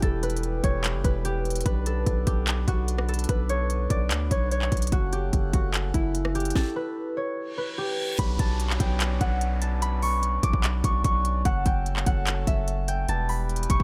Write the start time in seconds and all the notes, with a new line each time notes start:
Already playing: E4 G4
0.02 E1 E3 G3 B3 G4 A4, kick, closed hi-hat
0.23 B4, closed hi-hat
0.30 closed hi-hat
0.37 closed hi-hat
0.43 closed hi-hat
0.64 E1 C#5, kick, closed hi-hat
0.84 clap, closed hi-hat
0.94 F#1
1.04 E1 B4, kick, closed hi-hat
1.25 G4, closed hi-hat
1.45 closed hi-hat
1.50 closed hi-hat
1.55 closed hi-hat
1.61 closed hi-hat
1.66 B1 D3 D4 B4, kick, closed hi-hat
1.86 A4, closed hi-hat
2.06 B1, kick, closed hi-hat
2.27 B1 G4, kick, closed hi-hat
2.47 clap, closed hi-hat
2.68 B1 F#4, kick, closed hi-hat
2.88 closed hi-hat
2.98 cross-stick
3.08 A4, closed hi-hat
3.14 closed hi-hat
3.19 closed hi-hat
3.24 closed hi-hat
3.29 B1 B4, kick, closed hi-hat
3.49 C#5, closed hi-hat
3.70 closed hi-hat
3.90 B1 D5, kick, closed hi-hat
4.11 D2, clap, closed hi-hat
4.31 B1 C#5, kick, closed hi-hat
4.51 C#5, closed hi-hat
4.62 clap
4.72 B1, kick, closed hi-hat
4.77 closed hi-hat
4.82 closed hi-hat
4.87 closed hi-hat
4.92 F#1 C#3 A3 F#4 F#5, kick, closed hi-hat
5.13 G4, closed hi-hat
5.33 F#1, kick, closed hi-hat
5.53 F#1 F#4, kick, closed hi-hat
5.74 clap, closed hi-hat
5.94 F#1 E4, kick, closed hi-hat
6.15 closed hi-hat
6.25 cross-stick
6.35 G4, closed hi-hat
6.40 closed hi-hat
6.45 closed hi-hat
6.50 closed hi-hat
6.56 A4, kick, snare
6.76 B4
7.17 C#5
7.37 reverse cymbal
7.58 B4
7.78 G4
8.19 B1 F#3 B3 C#4 D4 B5, kick, closed hi-hat, downlifter
8.39 B1 A5, kick, closed hi-hat
8.60 closed hi-hat
8.70 clap
8.80 B1 G5, kick, closed hi-hat
9.00 clap, closed hi-hat
9.21 B1 F#5, kick, closed hi-hat
9.41 closed hi-hat
9.62 A5, closed hi-hat
9.82 B5, closed hi-hat
10.02 C#6, open hi-hat
10.23 closed hi-hat
10.43 B1 D6, kick, closed hi-hat
10.53 B1, kick
10.64 clap, closed hi-hat
10.84 B1 C#6, kick, closed hi-hat
11.04 B1 C#6, kick, closed hi-hat
11.25 closed hi-hat
11.45 F#1 A3 A4 F#5, kick, closed hi-hat
11.66 F#1 G5, kick, closed hi-hat
11.86 closed hi-hat
11.96 clap
12.06 F#1 F#5, kick, closed hi-hat
12.27 clap, closed hi-hat
12.47 F#1 E5, kick, closed hi-hat
12.68 closed hi-hat
12.88 G5, closed hi-hat
13.09 E1 E3 G3 B3 G4 A5, closed hi-hat
13.29 B5, open hi-hat
13.49 closed hi-hat
13.56 closed hi-hat
13.63 closed hi-hat
13.70 E1 C#6, kick, closed hi-hat
13.80 E1, kick